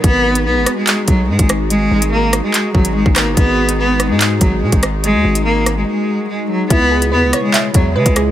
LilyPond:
<<
  \new Staff \with { instrumentName = "Synth pluck" } { \time 4/4 \key gis \minor \tempo 4 = 144 r1 | r1 | r1 | r1 |
e'8 gis'8 b'8 cis''8 e''8 cis''8 b'8 gis'8 | }
  \new Staff \with { instrumentName = "Analog synth pad" } { \time 4/4 \key gis \minor <gis dis' fis' gis'>1~ | <gis dis' fis' gis'>1~ | <gis dis' fis' gis'>1~ | <gis dis' fis' gis'>1 |
<b, cis e'>1 | }
  \new Staff \with { instrumentName = "Cello" } { \clef bass \time 4/4 \key gis \minor b4 b8. gis8. fis8 gis8 r8 | gis4 ais8. gis8. fis8 gis8 ais8 | b4 b8. gis8. fis8 gis8 r8 | gis4 ais8. gis16 gis4 gis8 fis8 |
b4 b8. gis8. fis8 gis8 r8 | }
  \new Staff \with { instrumentName = "808-style bass" } { \clef bass \time 4/4 \key gis \minor gis,,4 b,,16 gis,,16 r4 b,,8 gis,16 gis,,8.~ | gis,,8 gis,,4~ gis,,16 r8. gis,,8. gis,,8 fis,,16 | gis,,4.~ gis,,16 gis,8. gis,,8 b,16 gis,,8.~ | gis,,16 dis,16 gis,,4. r2 |
cis,4 e,16 cis,16 r4 e,8 cis16 cis,8. | }
  \new DrumStaff \with { instrumentName = "Drums" } \drummode { \time 4/4 <hh bd>8. hh16 r8 <hh ss>8 <hc hh>8 <hh bd>8 r16 <hh bd>16 <hh ss>8 | hh8. hh16 r8 <hh ss>8 <hc hh>8 bd16 hh16 r16 bd16 <hc hh ss>8 | <hh bd>8. hh16 r8 <hh ss>8 <hc hh>8 <hh bd>8 r16 <hh bd>16 <hh ss>8 | hh8. hh16 r8 <hh ss>8 r4 r4 |
<hh bd>8. hh16 r8 <hh ss>8 <hc hh>8 <hh bd>8 r16 <hh bd>16 <hh ss>8 | }
>>